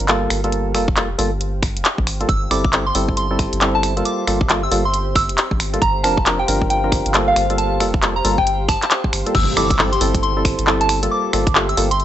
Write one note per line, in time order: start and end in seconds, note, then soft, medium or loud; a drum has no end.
0.00 0.27 G1 medium
0.00 12.05 G4 medium
0.00 0.30 C5 medium
0.00 2.29 F5 medium
0.08 0.41 G3 medium
0.08 0.41 A#3 medium
0.08 0.41 F4 medium
0.08 0.41 A4 loud
0.08 clap loud
0.08 closed hi-hat medium
0.30 0.76 G1 medium
0.30 finger snap medium
0.30 open hi-hat medium
0.44 0.72 G3 medium
0.44 0.72 A#3 medium
0.44 0.72 F4 medium
0.44 0.72 A4 medium
0.44 closed hi-hat soft
0.52 closed hi-hat medium
0.69 12.05 C5 medium
0.74 1.15 F1 medium
0.74 0.87 G3 medium
0.74 0.87 A#3 medium
0.74 0.87 F4 medium
0.74 0.87 A4 loud
0.74 finger snap medium
0.74 open hi-hat medium
0.88 kick loud
0.96 1.09 G3 medium
0.96 1.09 A#3 medium
0.96 1.09 F4 medium
0.96 1.09 A4 medium
0.96 clap loud
0.96 closed hi-hat medium
1.18 1.78 G1 loud
1.18 1.31 G3 medium
1.18 1.31 A#3 medium
1.18 1.31 F4 medium
1.18 1.31 A4 loud
1.18 open hi-hat medium
1.41 closed hi-hat medium
1.63 finger snap medium
1.63 kick loud
1.63 open hi-hat medium
1.76 1.83 F1 loud
1.76 closed hi-hat medium
1.85 clap loud
1.85 closed hi-hat medium
1.98 2.08 A#1 loud
1.98 kick medium
2.07 2.25 G1 medium
2.07 finger snap medium
2.07 open hi-hat medium
2.21 2.28 G3 medium
2.21 2.28 A#3 medium
2.21 2.28 F4 medium
2.21 2.28 A4 medium
2.21 closed hi-hat soft
2.29 2.47 G1 loud
2.29 2.40 E6 loud
2.29 kick loud
2.29 closed hi-hat medium
2.51 2.92 G1 medium
2.51 2.63 G3 medium
2.51 2.63 C4 medium
2.51 2.63 E4 medium
2.51 2.63 A4 loud
2.51 2.67 D6 medium
2.51 finger snap soft
2.51 open hi-hat medium
2.65 kick loud
2.73 2.85 G3 medium
2.73 2.85 C4 medium
2.73 2.85 E4 medium
2.73 2.85 A4 medium
2.73 clap loud
2.73 closed hi-hat medium
2.86 2.98 C6 medium
2.95 3.48 G1 loud
2.95 3.28 G3 medium
2.95 3.28 C4 medium
2.95 3.28 E4 medium
2.95 3.28 A4 medium
2.95 open hi-hat medium
3.09 kick medium
3.17 3.33 C6 medium
3.17 closed hi-hat medium
3.31 3.59 G3 medium
3.31 3.59 C4 medium
3.31 3.59 E4 medium
3.31 3.59 A4 medium
3.39 finger snap medium
3.39 kick loud
3.39 open hi-hat loud
3.53 4.02 G1 medium
3.53 closed hi-hat medium
3.61 3.94 G3 loud
3.61 3.94 C4 medium
3.61 3.94 E4 medium
3.61 3.94 A4 loud
3.61 clap loud
3.61 closed hi-hat medium
3.75 3.87 A5 medium
3.83 finger snap medium
3.83 open hi-hat medium
3.97 4.25 G3 medium
3.97 4.25 A#3 medium
3.97 4.25 F4 medium
3.97 4.25 A4 medium
3.97 closed hi-hat soft
4.05 4.21 D6 medium
4.05 closed hi-hat medium
4.27 4.68 G1 medium
4.27 4.40 G3 loud
4.27 4.40 A#3 medium
4.27 4.40 F4 medium
4.27 4.40 A4 loud
4.27 finger snap medium
4.27 open hi-hat loud
4.41 kick loud
4.49 4.62 G3 medium
4.49 4.62 A#3 medium
4.49 4.62 F4 medium
4.49 4.62 A4 medium
4.49 clap loud
4.49 closed hi-hat medium
4.63 4.70 E6 medium
4.71 5.31 G1 loud
4.71 4.84 G3 loud
4.71 4.84 A#3 medium
4.71 4.84 F4 medium
4.71 4.84 A4 loud
4.71 open hi-hat medium
4.85 9.35 F5 medium
4.85 4.97 C6 medium
4.94 closed hi-hat medium
5.16 5.32 E6 medium
5.16 finger snap medium
5.16 kick loud
5.16 open hi-hat loud
5.29 5.36 F1 loud
5.29 closed hi-hat medium
5.38 clap loud
5.38 closed hi-hat medium
5.51 5.61 A#1 loud
5.51 kick medium
5.60 5.78 G1 medium
5.60 finger snap soft
5.60 open hi-hat medium
5.74 5.81 G3 medium
5.74 5.81 A#3 medium
5.74 5.81 F4 medium
5.74 5.81 A4 medium
5.74 closed hi-hat soft
5.82 6.05 G1 loud
5.82 5.93 A#5 loud
5.82 kick loud
5.82 closed hi-hat medium
6.03 6.45 F1 medium
6.03 6.16 F3 medium
6.03 6.16 C4 medium
6.03 6.16 D4 medium
6.03 6.16 A#4 loud
6.03 6.19 A5 medium
6.03 finger snap medium
6.03 open hi-hat loud
6.17 kick medium
6.26 6.38 F3 medium
6.26 6.38 C4 medium
6.26 6.38 D4 medium
6.26 6.38 A#4 medium
6.26 clap loud
6.26 closed hi-hat medium
6.39 6.51 G5 medium
6.48 7.01 G1 loud
6.48 6.80 F3 medium
6.48 6.80 C4 medium
6.48 6.81 D4 medium
6.48 6.81 A#4 medium
6.48 open hi-hat medium
6.62 kick medium
6.70 6.86 G5 medium
6.70 closed hi-hat medium
6.84 7.12 F3 medium
6.84 7.12 C4 medium
6.84 7.12 D4 medium
6.84 7.12 A#4 medium
6.92 finger snap medium
6.92 kick loud
6.92 open hi-hat loud
7.06 7.33 G1 medium
7.06 closed hi-hat medium
7.14 7.47 G3 loud
7.14 7.47 A#3 medium
7.14 7.47 F4 medium
7.14 7.47 A4 loud
7.14 clap loud
7.14 closed hi-hat medium
7.28 7.40 F5 medium
7.36 7.82 G1 medium
7.36 finger snap medium
7.36 open hi-hat medium
7.50 7.78 G3 medium
7.50 7.78 A#3 medium
7.50 7.78 F4 medium
7.50 7.78 A4 medium
7.50 closed hi-hat soft
7.58 7.74 A5 medium
7.58 closed hi-hat medium
7.80 8.21 F1 medium
7.80 7.93 G3 loud
7.80 7.93 A#3 medium
7.80 7.93 F4 medium
7.80 7.93 A4 loud
7.80 finger snap medium
7.80 open hi-hat loud
7.94 kick loud
8.02 8.15 G3 medium
8.02 8.15 A#3 medium
8.02 8.15 F4 medium
8.02 8.15 A4 medium
8.02 clap loud
8.02 closed hi-hat medium
8.16 8.23 A#5 medium
8.24 8.77 G1 loud
8.24 8.37 G3 medium
8.24 8.37 A#3 medium
8.24 8.37 F4 medium
8.24 8.37 A4 loud
8.24 open hi-hat medium
8.38 8.50 G5 medium
8.38 kick medium
8.47 closed hi-hat medium
8.68 8.84 A5 loud
8.68 finger snap medium
8.68 kick loud
8.68 open hi-hat loud
8.82 clap medium
8.82 closed hi-hat medium
8.91 clap loud
8.91 closed hi-hat medium
9.04 kick medium
9.13 9.23 G1 medium
9.13 finger snap medium
9.13 open hi-hat medium
9.26 9.34 G3 medium
9.26 9.34 A#3 medium
9.26 9.34 F4 medium
9.26 9.34 A4 medium
9.26 closed hi-hat soft
9.35 9.53 G1 loud
9.35 9.46 E6 medium
9.35 kick loud
9.35 crash loud
9.35 impact medium
9.57 9.98 G1 medium
9.57 9.69 G3 loud
9.57 9.69 C4 medium
9.57 9.69 E4 medium
9.57 9.69 A4 loud
9.57 9.73 D6 medium
9.57 finger snap medium
9.57 open hi-hat loud
9.70 kick loud
9.70 closed hi-hat medium
9.79 9.91 G3 medium
9.79 9.91 C4 medium
9.79 9.91 E4 medium
9.79 9.91 A4 medium
9.79 clap loud
9.92 10.04 C6 medium
9.92 closed hi-hat soft
10.01 10.54 G1 loud
10.01 10.33 G3 medium
10.01 10.33 C4 medium
10.01 10.33 E4 medium
10.01 10.33 A4 medium
10.01 open hi-hat loud
10.15 kick medium
10.15 closed hi-hat medium
10.23 10.39 C6 medium
10.23 closed hi-hat soft
10.37 10.65 G3 medium
10.37 10.65 C4 medium
10.37 10.65 E4 medium
10.37 10.65 A4 medium
10.45 finger snap medium
10.45 kick loud
10.45 open hi-hat loud
10.59 11.08 G1 medium
10.59 closed hi-hat medium
10.67 11.00 G3 loud
10.67 11.00 C4 medium
10.67 11.00 E4 medium
10.67 11.00 A4 loud
10.67 clap loud
10.81 10.93 A5 medium
10.81 closed hi-hat medium
10.89 finger snap medium
10.89 open hi-hat medium
11.03 11.31 G3 medium
11.03 11.31 A#3 medium
11.03 11.31 F4 medium
11.03 11.31 A4 medium
11.03 closed hi-hat medium
11.11 11.27 D6 medium
11.33 11.74 G1 medium
11.33 11.46 G3 loud
11.33 11.46 A#3 medium
11.33 11.46 F4 medium
11.33 11.46 A4 loud
11.33 finger snap medium
11.33 open hi-hat loud
11.47 kick loud
11.47 closed hi-hat medium
11.55 11.68 G3 medium
11.55 11.68 A#3 medium
11.55 11.68 F4 medium
11.55 11.68 A4 medium
11.55 clap loud
11.67 12.05 F5 medium
11.67 11.76 E6 medium
11.67 closed hi-hat soft
11.77 12.05 G1 loud
11.77 11.90 G3 medium
11.77 11.90 A#3 medium
11.77 11.90 F4 medium
11.77 11.90 A4 loud
11.77 open hi-hat loud
11.91 12.03 C6 medium
11.91 closed hi-hat medium
12.00 closed hi-hat soft